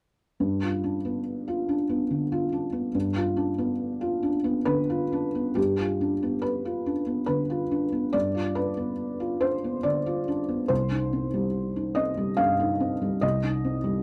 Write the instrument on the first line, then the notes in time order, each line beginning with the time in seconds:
felt piano
0.40 G2
0.63 F4
0.84 D4
1.05 B3
1.48 F4
1.69 D4
1.89 B3
2.11 D3
2.32 F4
2.52 D4
2.72 B3
2.95 G2
3.16 F4
3.36 D4
3.58 B3
4.01 F4
4.23 D4
4.44 B3
4.65 D3 B4
4.90 F4
5.12 D4
5.35 B3
5.55 G2 G4
5.79 F4
6.01 D4
6.23 B3
6.42 B4
6.65 F4
6.86 D4
7.06 B3
7.26 D3 B4
7.50 F4
7.71 D4
7.92 B3
8.13 G2 D5
8.35 F4
8.55 D4 B4
8.77 B3
9.20 F4
9.41 D4 C5
9.64 B3
9.83 D3 D5
10.06 F4
10.28 D4
10.49 B3
10.68 C2 C5
10.92 D#4
11.13 C4
11.34 G3
11.76 D#4
11.95 C4 D#5
12.17 G3
12.37 G2 F5
12.60 D#4
12.80 C4
13.02 G3
13.21 C2 D#5
13.44 D#4
13.65 C4
13.84 G3